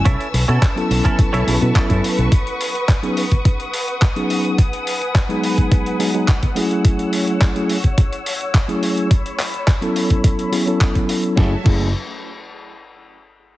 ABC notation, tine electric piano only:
X:1
M:4/4
L:1/16
Q:1/4=106
K:F#dor
V:1 name="Tine electric piano"
z4 z [F,B,CEA]4- [F,B,CEA] [F,B,CEG] [F,B,CEA]4- [F,B,CEA] | z4 z [F,B,CDG] z6 z [F,B,CDG]3 | z4 z [F,G,B,DG]4- [F,G,B,DG] [F,G,B,DG] [F,G,B,DG] z2 [F,A,CEG]2- | [F,A,CEG]4- [F,A,CEG] [F,A,CEG] z6 z [F,A,CEG]3 |
z4 z [F,B,CEA]4- [F,B,CEA] [F,B,CEG] [F,B,CEA]4- [F,B,CEA] | [F,A,CEG] z [F,A,CEG]2 z12 |]